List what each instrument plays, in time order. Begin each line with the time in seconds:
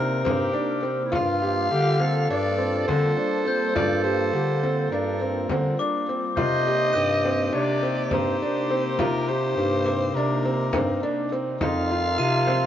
Already playing: bass clarinet C3, analog synth pad C3 A#3 D#4, felt piano C4, soprano saxophone A#4, glockenspiel F6
0.24 bass clarinet G2, felt piano C4, clarinet G4, frame drum
0.53 felt piano D4
0.83 felt piano C4
1.05 clarinet E4
1.12 bass clarinet G2, analog synth pad G3 A#3 F4 A5, felt piano F4, clarinet F4, soprano saxophone F5, frame drum
1.42 felt piano G4
1.71 bass clarinet D3, felt piano G4, clarinet G4
2.00 felt piano C4, clarinet A4, frame drum
2.30 bass clarinet G2, felt piano D4, soprano saxophone D5, frame drum
2.58 felt piano C4, frame drum
2.87 bass clarinet D3, felt piano C4, soprano saxophone C5, frame drum
3.17 felt piano D4
3.45 felt piano C4, glockenspiel G6
3.75 bass clarinet G2, felt piano F4, soprano saxophone D5, frame drum
4.04 felt piano G4, soprano saxophone C5
4.33 bass clarinet D3, felt piano G4, frame drum
4.63 felt piano C4, frame drum
4.91 bass clarinet G2, felt piano D4, soprano saxophone A#4
5.21 felt piano C4, frame drum
5.49 bass clarinet D3, felt piano C4, frame drum
5.79 felt piano D4, glockenspiel D6
6.09 felt piano C4
6.36 bass clarinet C3, analog synth pad C3 A#3 D#4, felt piano F4, clarinet C5, soprano saxophone D#5, frame drum
6.67 felt piano G4
6.93 bass clarinet G2, clarinet G4, felt piano G4, glockenspiel D#7
7.25 felt piano C4, frame drum
7.53 bass clarinet C3, felt piano D4, soprano saxophone D5, frame drum
7.83 felt piano C4, frame drum
8.11 bass clarinet G2, felt piano C4, soprano saxophone C5, glockenspiel A#5, frame drum
8.42 felt piano D4
8.71 felt piano C4
8.99 bass clarinet C3, felt piano F4, soprano saxophone A#4, frame drum
9.28 felt piano G4, soprano saxophone C5
9.57 bass clarinet G2, felt piano G4
9.86 felt piano C4, glockenspiel D6, frame drum
10.15 bass clarinet C3, felt piano D4, soprano saxophone A#4, frame drum
10.45 felt piano C4, frame drum
10.73 bass clarinet G2, felt piano C4, frame drum
11.03 felt piano D4
11.32 felt piano C4
11.60 bass clarinet F2, analog synth pad F3 A#4, felt piano D#4, clarinet F4, soprano saxophone F5, frame drum
11.90 felt piano F4
12.18 bass clarinet C3, felt piano F4, glockenspiel D#7
12.47 felt piano C4, frame drum